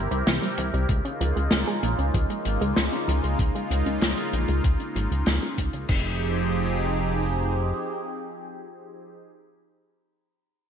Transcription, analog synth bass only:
0.11 C2
0.27 C2
0.58 C2
0.74 C2
0.89 C#2
1.21 C#2
1.36 C#2
1.52 C#2
1.83 A#1
1.99 C#2
2.14 C#2
2.46 G#1
2.61 C#2
2.77 C#2
3.08 C#2
3.24 C#2
3.39 C#2
3.71 C#2
3.86 C#2
4.02 C#2
4.33 A#1
4.49 C#2
4.64 C#2
4.95 G#1
5.11 C#2
5.27 C#2
5.58 C#2
5.74 C#2
5.89 F1

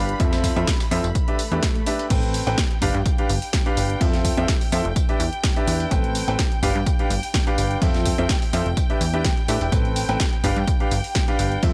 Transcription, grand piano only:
Already playing: D4 G4 B4 F5
0.20 C4 F4 A4 E5
0.56 C4 F4 A4 E5
0.91 C4 F4 A4 E5
1.28 D4 G4 B4 E5
1.52 D4 G4 B4 E5
1.86 D4 G4 B4 E5
2.10 C4 A4 B4 G5
2.47 C4 A4 B4 G5
2.82 D4 G4 B4 F5
3.18 D4 G4 B4 F5
3.66 D4 G4 B4 F5
4.01 C4 F4 A4 E5
4.37 C4 F4 A4 E5
4.72 C4 F4 A4 E5
5.09 D4 G4 B4 E5
5.56 D4 G4 B4 E5
5.91 C4 A4 B4 G5
6.28 C4 A4 B4 G5
6.63 D4 G4 B4 F5
6.99 D4 G4 B4 F5
7.47 D4 G4 B4 F5
7.82 C4 F4 A4 E5
8.18 C4 F4 A4 E5
8.53 C4 F4 A4 E5
8.90 D4 G4 B4 E5
9.14 D4 G4 B4 E5
9.49 D4 G4 B4 E5
9.72 C4 A4 B4 G5
10.09 C4 A4 B4 G5
10.44 D4 G4 B4 F5
10.80 D4 G4 B4 F5
11.28 D4 G4 B4 F5
11.63 C4 F4 A4 E5

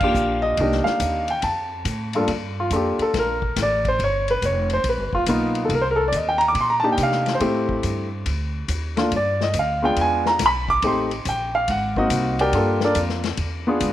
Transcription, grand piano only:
Already playing: F5
0.03 A#3 D4 F4 G4
0.42 D#5
0.60 A#3 D4 D#4 G4
0.84 F5
1.30 G5
1.43 A5
2.15 G2 A#3 D4 F4 A4
2.60 F4
2.72 A#3 D4 F4 A4
2.76 G4
3.02 A4
3.19 A#4
3.62 D5
3.88 C5
4.04 C#5
4.31 B4
4.45 C#5
4.74 C5
4.89 B4
5.15 F4
5.28 A#3 B3 D#4 F4
5.65 A4
5.75 A#4
5.82 C5
5.91 A#4
5.96 A4
6.08 D5
6.16 D#5
6.29 G5
6.38 A#5
6.48 D6
6.61 C6
6.70 A#5
6.80 A#3 D4 D#4 A5
6.84 G4
6.92 G5
7.03 F5
7.35 C5
7.41 A3 C4 E4 G4
8.97 A3 A#3 D4 F4
9.16 D5
9.42 D#5
9.59 F5
9.82 G#3 B3 D4 F4 G5
10.01 G#5
10.27 A#5
10.46 B5
10.70 D6
10.84 A3 C4 D#4 G4 C6
11.29 G5
11.55 F5
11.71 F#5
11.97 A#3 C4 D#4 F#4 D#5
12.41 G4 A#4 D5 G5
12.54 A#3 D4 F4 A4
12.84 D4 A4 A#4 D5
13.67 B3 D4 F4 G#4

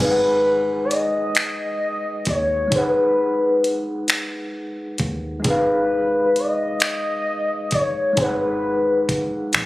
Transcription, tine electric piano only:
Already playing: G#3 D#4 G#5
0.00 G#4 B4
0.05 F5
0.11 F#5
2.68 G#3 D#4
2.73 G#4 B4
2.78 F#5
5.40 G#3 D#4
5.45 G#4 B4
5.50 F5
8.13 G#3 D#4
8.18 G#4 B4
8.24 F#5

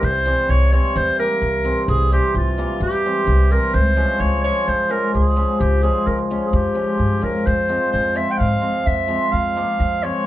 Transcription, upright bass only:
0.03 C2
0.49 C2
0.96 E2
1.42 C2
1.88 C2
2.35 C2
2.80 E2
3.27 C2
3.74 C#2
4.20 C#2
4.68 F2
5.14 C#2
5.60 C#2
6.07 C#2
6.53 F2
6.99 G2
7.23 F2
7.47 F2
7.94 F2
8.40 G#2
8.86 F2
9.33 F2
9.80 F2

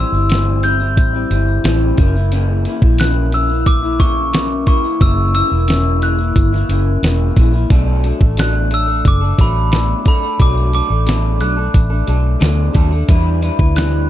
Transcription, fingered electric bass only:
0.12 G1
0.97 A1
1.30 G1
1.64 A1
1.98 F#1
2.82 A#1
5.01 F#1
5.51 E1
6.36 G1
6.69 F#1
7.02 E1
7.37 A#1
7.70 B1
8.21 A1
9.05 F#1
9.38 A1
10.40 B1
10.90 A1
11.41 B1
11.74 A1
12.08 B1
12.41 D2
12.75 D#2
13.08 E2
13.59 D2

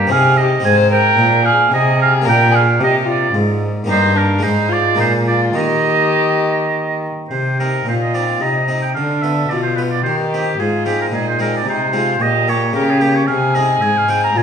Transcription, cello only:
0.10 C3
0.64 G#2
1.17 A#2
1.72 C3
2.27 A#2
2.80 C3
3.34 G#2
3.87 G2
4.43 G#2
4.98 A#2
5.56 D#3
7.30 C3
7.86 A#2
8.41 C3
8.96 D3
9.49 B2
10.04 D#3
10.58 G#2
11.12 A#2
11.66 C3
12.19 A#2
12.73 C#3
13.28 C3
13.82 G#2
14.36 A#2

